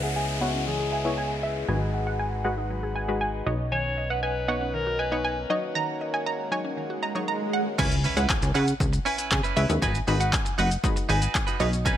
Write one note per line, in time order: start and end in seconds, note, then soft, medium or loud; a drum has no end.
0.00 1.65 C#2 medium
0.00 1.67 C#3 medium
0.00 1.67 G#3 medium
0.00 0.12 B3 medium
0.00 1.67 B3 medium
0.00 0.12 E4 medium
0.00 1.67 E4 medium
0.00 0.09 G#4 medium
0.00 0.12 C#5 medium
0.00 0.15 E5 medium
0.00 0.13 F#5 medium
0.00 downlifter medium
0.16 0.43 G#4 medium
0.16 0.27 E5 medium
0.16 0.35 G#5 medium
0.41 0.80 B3 medium
0.41 0.81 E4 medium
0.41 0.67 F#4 medium
0.41 0.81 C#5 medium
0.41 0.53 E5 medium
0.41 0.51 F#5 medium
0.54 0.66 C#4 medium
0.67 0.78 E3 medium
0.67 1.39 G#4 medium
0.80 0.91 G#4 medium
0.92 1.04 E5 medium
0.92 1.12 G#5 medium
1.05 1.44 B3 medium
1.05 1.44 E4 medium
1.05 1.44 C#5 medium
1.05 1.16 E5 medium
1.18 1.27 G#5 medium
1.43 1.53 E5 medium
1.68 3.43 G#1 medium
1.68 1.80 F#3 medium
1.68 2.15 G#3 medium
1.68 3.45 G#3 medium
1.68 5.46 D#4 medium
1.68 2.16 F#4 medium
1.68 3.45 F#4 medium
1.68 3.45 B4 medium
1.68 2.16 B4 medium
1.68 1.88 G#5 loud
1.94 2.05 F#5 medium
2.07 2.16 F#5 medium
2.07 2.18 F#5 medium
2.19 2.31 F#5 medium
2.19 2.39 G#5 medium
2.45 2.84 G#3 medium
2.45 2.84 F#4 medium
2.45 2.84 B4 medium
2.45 2.54 F#5 medium
2.45 2.56 F#5 medium
2.58 2.69 D#4 medium
2.70 2.82 F#3 medium
2.83 2.94 G#4 medium
2.96 3.07 F#5 medium
2.96 3.15 G#5 medium
3.08 3.47 G#3 medium
3.08 3.47 F#4 medium
3.08 3.47 B4 medium
3.08 3.20 F#5 medium
3.21 3.31 G#5 medium
3.46 5.46 B1 medium
3.46 4.28 B3 medium
3.46 5.48 B3 medium
3.46 7.75 C#4 medium
3.46 4.28 D#4 medium
3.46 4.28 C#5 medium
3.46 3.56 D#5 medium
3.72 3.83 D#3 medium
3.72 4.12 C#5 loud
3.72 3.91 G#5 loud
3.97 4.09 D#5 medium
4.10 4.23 B4 medium
4.10 4.22 D#5 medium
4.10 4.20 F#5 medium
4.23 4.75 B4 medium
4.23 4.34 D#5 medium
4.23 4.42 G#5 medium
4.48 4.87 B3 medium
4.48 4.87 D#4 medium
4.48 4.88 C#5 medium
4.48 4.60 D#5 loud
4.48 4.58 F#5 medium
4.61 4.72 C#4 medium
4.74 4.85 D#3 medium
4.74 5.01 A#4 medium
4.87 4.98 F#4 medium
4.99 5.50 B4 medium
4.99 5.11 D#5 medium
4.99 5.19 G#5 medium
5.12 5.50 B3 medium
5.12 5.49 D#4 medium
5.12 5.49 C#5 medium
5.12 5.23 D#5 medium
5.25 5.34 G#5 medium
5.50 7.77 D#3 medium
5.50 6.31 F#3 medium
5.50 7.77 A#3 medium
5.50 6.31 D#4 medium
5.50 7.77 F#4 medium
5.50 6.32 C#5 medium
5.50 5.60 D#5 medium
5.75 5.87 D#3 medium
5.75 5.95 A#5 loud
5.75 swell medium
6.01 6.12 D#5 medium
6.14 6.25 D#5 loud
6.14 6.23 G#5 medium
6.26 6.38 D#5 medium
6.26 6.46 A#5 medium
6.52 6.91 F#3 medium
6.52 6.91 D#4 medium
6.52 6.91 C#5 medium
6.52 6.63 D#5 loud
6.52 6.61 G#5 medium
6.65 6.76 C#4 medium
6.77 6.89 D#3 medium
6.90 7.01 F#4 medium
7.03 7.14 D#5 medium
7.03 7.22 A#5 medium
7.15 7.54 F#3 medium
7.15 7.54 D#4 medium
7.15 7.54 C#5 medium
7.15 7.27 D#5 medium
7.28 7.38 A#5 medium
7.53 7.63 F#5 medium
7.78 8.07 C#2 loud
7.78 8.02 G#3 medium
7.78 7.94 C#4 loud
7.78 8.02 C#4 medium
7.78 8.02 E4 medium
7.78 7.95 E4 loud
7.78 8.02 B4 medium
7.78 7.95 B4 loud
7.78 7.98 G#5 loud
7.78 kick loud
7.78 crash loud
7.78 impact medium
7.78 shaker medium
7.92 closed hi-hat medium
7.92 shaker medium
8.04 8.16 C#4 medium
8.04 8.16 E4 medium
8.04 8.15 B4 medium
8.04 open hi-hat medium
8.04 shaker medium
8.17 8.26 C#2 medium
8.17 8.79 G#3 medium
8.17 8.79 C#4 medium
8.17 8.28 C#4 medium
8.17 8.79 E4 medium
8.17 8.29 E4 medium
8.17 8.29 B4 medium
8.17 8.80 B4 medium
8.17 8.27 F#5 medium
8.17 closed hi-hat medium
8.17 shaker medium
8.29 8.49 G#5 medium
8.29 kick loud
8.29 clap loud
8.29 shaker medium
8.42 8.52 C#2 loud
8.42 muted clean electric guitar stroke soft
8.42 closed hi-hat medium
8.42 shaker medium
8.54 8.74 C#3 loud
8.54 8.70 C#4 medium
8.54 8.67 E4 medium
8.54 8.66 B4 medium
8.54 8.65 F#5 medium
8.54 open hi-hat medium
8.54 shaker medium
8.67 muted clean electric guitar stroke medium
8.67 closed hi-hat medium
8.67 shaker medium
8.80 8.99 C#2 loud
8.80 muted clean electric guitar stroke soft
8.80 kick loud
8.80 shaker medium
8.93 muted clean electric guitar stroke medium
8.93 closed hi-hat soft
8.93 shaker medium
9.05 9.18 C#4 medium
9.05 9.18 E4 medium
9.05 9.17 B4 medium
9.05 9.25 G#5 medium
9.05 open hi-hat medium
9.05 shaker medium
9.18 9.30 C#4 medium
9.18 9.30 E4 medium
9.18 9.31 B4 medium
9.18 closed hi-hat medium
9.18 shaker medium
9.31 9.41 C#3 loud
9.31 9.41 G#5 medium
9.31 muted clean electric guitar stroke soft
9.31 kick loud
9.31 clap loud
9.31 shaker medium
9.43 9.55 C#4 medium
9.43 9.56 E4 medium
9.43 9.56 B4 medium
9.43 closed hi-hat medium
9.43 shaker soft
9.56 9.66 C#2 medium
9.56 9.64 G#3 medium
9.56 9.72 C#4 medium
9.56 9.65 C#4 medium
9.56 9.65 E4 medium
9.56 9.69 E4 medium
9.56 9.65 B4 medium
9.56 9.68 B4 loud
9.56 9.66 E5 medium
9.56 open hi-hat medium
9.56 shaker medium
9.69 9.79 D#2 medium
9.69 9.82 G#3 medium
9.69 9.82 C#4 medium
9.69 9.82 E4 medium
9.69 9.82 B4 medium
9.69 muted clean electric guitar stroke medium
9.69 closed hi-hat medium
9.69 shaker medium
9.82 10.01 G#1 loud
9.82 9.98 D#4 medium
9.82 9.98 F#4 medium
9.82 9.98 B4 loud
9.82 10.02 G#5 loud
9.82 kick loud
9.82 shaker medium
9.95 closed hi-hat medium
9.95 shaker medium
10.07 10.36 G#1 loud
10.07 10.54 G#3 medium
10.07 10.20 D#4 medium
10.07 10.54 D#4 medium
10.07 10.55 F#4 medium
10.07 10.20 F#4 medium
10.07 10.55 B4 medium
10.07 10.19 B4 medium
10.07 open hi-hat medium
10.07 shaker medium
10.20 10.31 D#4 medium
10.20 10.32 F#4 medium
10.20 10.32 B4 medium
10.20 10.30 F#5 medium
10.20 closed hi-hat medium
10.20 shaker medium
10.33 10.52 G#5 medium
10.33 muted clean electric guitar stroke soft
10.33 kick loud
10.33 clap loud
10.33 shaker medium
10.45 muted clean electric guitar stroke soft
10.45 closed hi-hat medium
10.45 shaker medium
10.58 10.77 F#1 medium
10.58 10.74 D#4 medium
10.58 10.71 F#4 loud
10.58 10.70 B4 loud
10.58 10.68 F#5 medium
10.58 open hi-hat medium
10.58 shaker medium
10.71 muted clean electric guitar stroke medium
10.71 closed hi-hat medium
10.71 shaker medium
10.84 11.46 G#3 medium
10.84 11.46 D#4 medium
10.84 11.46 F#4 medium
10.84 11.47 B4 loud
10.84 muted clean electric guitar stroke medium
10.84 kick loud
10.84 shaker medium
10.96 muted clean electric guitar stroke medium
10.96 closed hi-hat medium
10.96 shaker medium
11.09 11.28 G#1 medium
11.09 11.22 D#4 medium
11.09 11.21 F#4 loud
11.09 11.20 B4 loud
11.09 11.29 G#5 medium
11.09 open hi-hat medium
11.09 shaker medium
11.21 11.33 D#4 medium
11.21 11.34 F#4 medium
11.21 11.34 B4 medium
11.21 closed hi-hat medium
11.21 shaker medium
11.34 11.44 G#5 medium
11.34 muted clean electric guitar stroke soft
11.34 kick loud
11.34 clap loud
11.34 shaker medium
11.47 11.59 D#4 medium
11.47 11.60 F#4 medium
11.47 11.59 B4 medium
11.47 closed hi-hat soft
11.47 shaker soft
11.60 11.97 B1 loud
11.60 11.97 B3 medium
11.60 11.75 C#4 medium
11.60 11.97 D#4 medium
11.60 11.72 D#4 medium
11.60 11.97 F#4 medium
11.60 11.71 B4 loud
11.60 11.97 C#5 medium
11.60 11.70 D#5 medium
11.60 open hi-hat medium
11.60 shaker medium
11.73 muted clean electric guitar stroke medium
11.73 closed hi-hat medium
11.73 shaker medium
11.85 11.97 C#4 loud
11.85 11.97 D#4 medium
11.85 11.97 B4 loud
11.85 11.97 G#5 loud
11.85 kick loud
11.85 shaker medium